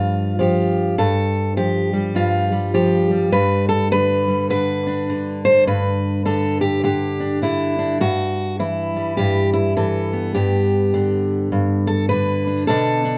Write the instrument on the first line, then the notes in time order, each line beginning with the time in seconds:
steel-string acoustic guitar
Already playing: G2 F3 F4 G4
0.39 F3 G4
0.98 G2 A4
1.57 F3 G4
1.93 G3
2.15 G2 F4
2.52 G3
2.74 F3 G4
3.11 G3
3.32 G2 B4
3.69 A4
3.91 D3 B4
4.28 G3
4.50 D3 B4
4.87 D4
5.09 D3
5.45 C5
5.67 G2 B4
6.25 D3 A4
6.61 G4
6.84 D3 G4
7.20 D4
7.42 D3 E4
7.79 D4
8.00 G2 F#4
8.59 E3 E4
8.96 G3
9.17 G2 G4
9.53 E4
9.77 E3 A4
10.13 B3
10.35 G2 G4
10.94 D3
11.52 G2
11.87 A4
12.09 D3 B4
12.47 D4
12.67 B2 D3 D4 A4
13.05 D4